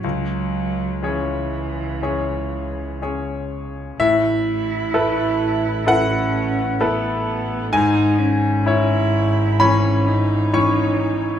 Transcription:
<<
  \new Staff \with { instrumentName = "Grand piano" } { \time 4/4 \key cis \minor \tempo 4 = 64 << { r1 | e''2 fis''2 | gis''2 b''4 cis'''4 | } \\ { cis,4 <cis' gis' cis''>4 <cis' gis' cis''>4 <cis' gis' cis''>4 | a,4 <e' a' b'>4 <e' a' b'>4 <e' a' b'>4 | gis,4 <cis' e' cis''>4 <e cis' cis''>4 <e cis' cis''>4 | } >> }
  \new Staff \with { instrumentName = "Cello" } { \time 4/4 \key cis \minor fis4 e2 r4 | e'2 cis'4 b4 | dis'8 cis'8 e'4 cis'8 dis'4. | }
  \new Staff \with { instrumentName = "Double bass" } { \clef bass \time 4/4 \key cis \minor cis,1 | a,,1 | gis,,1 | }
>>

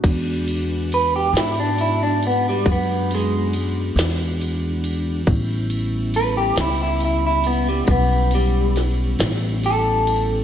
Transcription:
<<
  \new Staff \with { instrumentName = "Clean electric guitar" } { \time 12/8 \key e \mixolydian \tempo 4. = 46 r4 b'16 g'16 e'16 d'16 e'16 d'16 b16 g16 b8 gis8 r2 | r4 b'16 g'16 e'16 e'16 e'16 e'16 b16 g16 b8 g8 r4 a'4 | }
  \new Staff \with { instrumentName = "Tonewheel organ" } { \time 12/8 \key e \mixolydian <gis b d' fis'>1. | <g b cis' e'>1. | }
  \new Staff \with { instrumentName = "Upright bass" } { \clef bass \time 12/8 \key e \mixolydian e,4. gis,4. fis,4. e,4. | a,,4. cis,4. b,,4. a,,4. | }
  \new DrumStaff \with { instrumentName = "Drums" } \drummode { \time 12/8 <cymc bd cymr>8 cymr8 cymr8 <cymr sn>8 cymr8 cymr8 <bd cymr>8 cymr8 cymr8 <cymr sn>8 cymr8 cymr8 | <bd cymr>8 cymr8 cymr8 <cymr sn>8 cymr8 cymr8 <bd cymr>8 cymr8 <cymr sn>8 <cymr sn>8 cymr8 cymr8 | }
>>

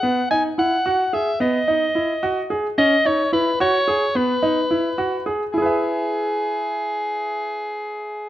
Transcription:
<<
  \new Staff \with { instrumentName = "Soprano saxophone" } { \time 5/8 \key e \major \tempo 4 = 109 fis''8 gis''8 fis''4 e''8 | dis''2 r8 | dis''8 cis''8 b'8 cis''4 | b'2 r8 |
gis'2~ gis'8~ | gis'2~ gis'8 | }
  \new Staff \with { instrumentName = "Grand piano" } { \time 5/8 \key e \major b8 dis'8 e'8 fis'8 gis'8 | b8 dis'8 e'8 fis'8 gis'8 | cis'8 dis'8 e'8 fis'8 gis'8 | b8 dis'8 e'8 fis'8 gis'8 |
<e' gis' b' e''>2~ <e' gis' b' e''>8~ | <e' gis' b' e''>2~ <e' gis' b' e''>8 | }
>>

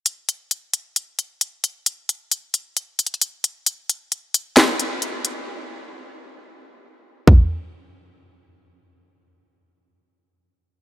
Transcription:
\new DrumStaff \with { instrumentName = "Drums" } \drummode { \time 4/4 \tempo 4 = 133 hh8 hh8 hh8 hh8 hh8 hh8 hh8 hh8 | hh8 hh8 hh8 hh8 \tuplet 3/2 { hh16 r16 r16 hh16 hh16 hh16 } hh8 hh8 | hh8 hh8 hh8 hh8 <hc hh sn>8 hh8 hh8 hh8 | r4 r4 r4 r4 |
<bd tomfh>4 r4 r4 r4 | r4 r4 r4 r4 | }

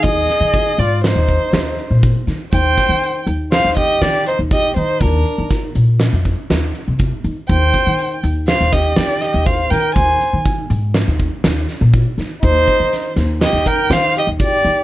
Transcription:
<<
  \new Staff \with { instrumentName = "Violin" } { \time 5/4 \key c \minor \tempo 4 = 121 ees''4. d''8 c''2 r4 | g''4. r8 f''8 ees''8 d''8 c''8 ees''8 c''8 | bes'4 r1 | g''4. r8 f''8 ees''8 d''8 ees''8 f''8 g''8 |
aes''4 r1 | c''4. r8 ees''8 g''8 f''8 ees''8 d''4 | }
  \new Staff \with { instrumentName = "Flugelhorn" } { \time 5/4 \key c \minor aes'4. f'8 ees'2 r4 | c''4. r8 c''8 g'8 g'8 ees'8 g'8 ees'8 | d'4 r1 | c''4. r8 c''8 g'8 g'8 g'8 c''8 bes'8 |
c''4 r1 | ees'4. r8 g'8 bes'8 c''8 g'8 g'4 | }
  \new Staff \with { instrumentName = "Upright bass" } { \clef bass \time 5/4 \key c \minor ees,8 r16 ees8. aes,8. ees,8 r16 ees,8 r16 bes,8 r16 ees16 r16 | ees,8 r16 ees8. ees,8. ees,8. ees8. ees,8. ees8 | ees,8 r16 ees8. bes,8. f,8 r16 ees,8 r16 c8 r16 ees16 r16 | ees,8 r16 ees8. ees,8. ees,8. ees8. ees,8. ees8 |
ees,8 r16 ees8. aes,8. ees,8 r16 ees,8 r16 bes,8 r16 ees16 r16 | ees,8 r16 ees8. ees,8. ees,8. ees8. ees,8. ees8 | }
  \new DrumStaff \with { instrumentName = "Drums" } \drummode { \time 5/4 <hh bd>8 <hh sn>8 <hh bd>8 hh8 <hh sn>8 <hh bd>8 <hh sn>8 hh8 <hh bd>8 <hh sn>8 | <hh bd>8 <hh bd sn>8 hh8 hh8 <hh sn>8 <hh bd>8 <hh sn>8 hh8 <hh bd>8 hh8 | <hh bd>8 hh8 <hh bd sn>8 hh8 <hh sn>8 <hh bd>8 <hh sn>8 hh8 <hh bd>8 hh8 | <hh bd>8 <hh bd>8 hh8 hh8 <hh sn>8 <hh bd sn>8 <hh sn>8 <hh sn>8 <hh bd>8 <hh sn>8 |
<hh bd>8 hh8 <hh bd>8 hh8 <hh sn>8 <hh bd>8 <hh sn>8 <hh sn>8 <hh bd>8 <hh sn>8 | <hh bd>8 <hh bd>8 <hh sn>8 <hh sn>8 <hh sn>8 <hh bd>8 <hh sn>8 hh8 <hh bd>8 hh8 | }
>>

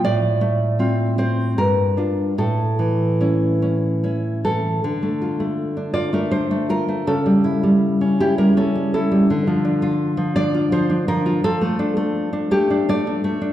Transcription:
\new Staff \with { instrumentName = "Nylon-string guitar" } { \time 3/4 \key d \minor \tempo 4 = 81 << { d''4. c''8 bes'4 | a'2 r8 a'8~ | a'4. d''16 bes'16 c''8 bes'8 | a'4. g'16 bes'16 a'8 a'8~ |
a'4. d''8 c''8 bes'8 | a'4. g'8 d''4 | } \\ { a,8 a8 <c' f'>8 c'8 g,8 <d' f'>8 | a,8 e8 <cis' e'>8 cis'8 <cis' e'>8 e8 | d16 a16 f'16 a8 d'16 f'16 a16 d'16 a16 f'16 a16 | cis16 g16 e'16 g8 cis'16 e'16 g16 cis'16 g16 e'16 g16 |
d16 f16 d'16 f'8 f16 d'16 f'16 f16 d'16 f16 f'16 | f16 a16 d'16 a8 d'16 a16 d'16 a16 d'16 a16 d'16 | } >> }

